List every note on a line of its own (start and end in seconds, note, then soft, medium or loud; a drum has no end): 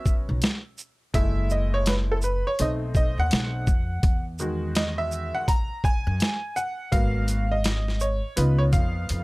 0.00 0.37 F#3 medium
0.00 0.37 B3 soft
0.00 0.38 C#4 medium
0.00 0.13 E5 medium
0.06 kick medium
0.06 shaker medium
0.29 0.41 B1 medium
0.42 snare loud
0.42 closed hi-hat medium
0.78 shaker soft
1.14 2.41 F#1 loud
1.14 2.18 G#3 medium
1.14 2.19 A3 medium
1.14 2.19 E4 medium
1.14 1.52 E5 loud
1.14 kick loud
1.14 closed hi-hat medium
1.50 1.74 D#5 medium
1.50 shaker medium
1.74 1.88 C#5 medium
1.86 1.93 B4 medium
1.86 snare loud
1.86 closed hi-hat medium
2.12 2.17 A4 medium
2.22 2.44 B4 medium
2.22 shaker medium
2.47 2.60 C#5 medium
2.59 3.14 B1 medium
2.59 3.64 A3 medium
2.59 3.64 C4 medium
2.59 3.64 D#4 medium
2.59 2.69 D#5 loud
2.59 closed hi-hat medium
2.95 3.19 D#5 medium
2.95 kick medium
2.95 shaker soft
3.18 3.30 D#2 medium
3.18 4.23 F#5 loud
3.31 3.64 B1 loud
3.31 snare loud
3.31 closed hi-hat medium
3.67 4.00 F2 loud
3.67 kick medium
3.67 shaker soft
4.03 5.30 E2 loud
4.03 kick loud
4.03 closed hi-hat medium
4.39 5.44 D#3 medium
4.39 5.44 G#3 medium
4.39 5.45 F#4 medium
4.39 shaker medium
4.75 4.97 D#5 medium
4.75 snare loud
4.75 closed hi-hat medium
4.98 5.35 E5 loud
5.11 shaker medium
5.35 5.49 F#5 loud
5.48 5.85 A#5 loud
5.48 kick medium
5.48 closed hi-hat medium
5.84 6.59 G#5 loud
5.84 kick medium
5.84 shaker soft
6.07 6.19 F#2 loud
6.20 snare loud
6.20 closed hi-hat medium
6.56 6.94 F#5 loud
6.56 shaker medium
6.92 8.19 G#1 loud
6.92 7.43 A#3 medium
6.92 7.44 B3 medium
6.92 7.44 F#4 medium
6.92 7.53 F5 loud
6.92 kick loud
6.92 closed hi-hat medium
7.28 closed hi-hat medium
7.28 shaker medium
7.51 8.03 D#5 medium
7.64 snare medium
7.64 closed hi-hat medium
7.88 snare soft
8.00 8.38 C#5 medium
8.00 shaker medium
8.36 8.70 C#2 loud
8.36 9.24 B3 medium
8.36 9.24 D#4 medium
8.36 9.24 F4 medium
8.36 8.60 B4 medium
8.36 closed hi-hat medium
8.58 8.63 C#5 medium
8.73 9.06 F2 loud
8.73 9.24 F5 medium
8.73 kick medium
8.73 closed hi-hat medium
8.73 shaker medium
9.09 9.24 F2 loud
9.09 closed hi-hat medium